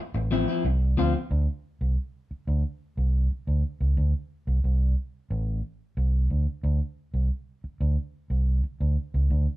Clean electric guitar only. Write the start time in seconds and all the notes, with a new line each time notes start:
0.15 muted clean electric guitar stroke
0.31 F3 C4 E4
0.48 F3 C4 E4
0.65 muted clean electric guitar stroke
0.97 F3 C4 F4
1.14 muted clean electric guitar stroke